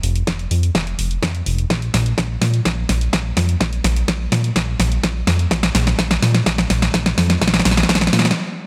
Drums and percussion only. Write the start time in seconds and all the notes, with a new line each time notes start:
0.03 open hi-hat
0.16 closed hi-hat
0.27 kick, snare, closed hi-hat
0.39 closed hi-hat
0.51 open hi-hat
0.63 closed hi-hat
0.75 kick, snare, closed hi-hat
0.87 closed hi-hat
0.99 open hi-hat
1.11 closed hi-hat
1.23 kick, snare, closed hi-hat
1.35 closed hi-hat
1.46 open hi-hat
1.58 closed hi-hat
1.70 kick, snare, closed hi-hat
1.82 closed hi-hat
1.94 snare, open hi-hat
2.06 closed hi-hat
2.18 kick, snare, closed hi-hat
2.42 snare, open hi-hat
2.54 closed hi-hat
2.65 kick, snare, closed hi-hat
2.89 snare, open hi-hat
3.01 closed hi-hat
3.13 kick, snare, closed hi-hat
3.37 snare, open hi-hat
3.49 closed hi-hat
3.61 kick, snare, closed hi-hat
3.73 closed hi-hat
3.84 snare, open hi-hat
3.96 closed hi-hat
4.08 kick, snare, closed hi-hat
4.32 snare, open hi-hat
4.44 closed hi-hat
4.56 kick, snare, closed hi-hat
4.80 snare, open hi-hat
4.92 closed hi-hat
5.03 kick, snare, closed hi-hat
5.27 snare, open hi-hat
5.39 closed hi-hat
5.51 kick, snare, closed hi-hat
5.63 snare, closed hi-hat
5.75 snare, open hi-hat
5.87 snare, closed hi-hat
5.99 kick, snare, closed hi-hat
6.11 snare
6.22 snare, open hi-hat
6.34 snare, closed hi-hat
6.46 kick, snare, closed hi-hat
6.58 snare
6.70 snare, open hi-hat
6.82 snare, closed hi-hat
6.94 kick, snare, closed hi-hat
7.06 snare
7.18 snare, open hi-hat
7.30 snare, closed hi-hat
7.42 kick, snare, closed hi-hat
7.48 snare
7.54 snare, closed hi-hat
7.60 snare
7.65 snare, open hi-hat
7.71 snare
7.77 snare, closed hi-hat
7.83 snare
7.89 kick, snare, closed hi-hat
7.95 snare
8.01 snare, closed hi-hat
8.07 snare
8.13 snare, open hi-hat
8.19 snare
8.25 snare, closed hi-hat
8.31 snare